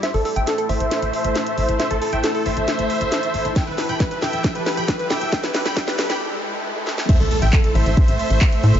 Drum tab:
CC |----------------|----------------|----------------|----------------|
HH |xooxxxoxxxoxxxox|xxoxxooxxxoxxxox|xooxxxoxxxoxxxox|xxoxxoox--------|
CP |----------------|----------------|----------------|----------------|
SD |o---o---o---o---|o---o---o---o---|o-o-o-o-o-o-o-o-|oooooooo------oo|
BD |----------------|----------------|o---o---o---o---|o---o-----------|

CC |x---------------|
HH |xooxxxoxxxoxxxox|
CP |----x-------x---|
SD |----------------|
BD |o---o---o---o---|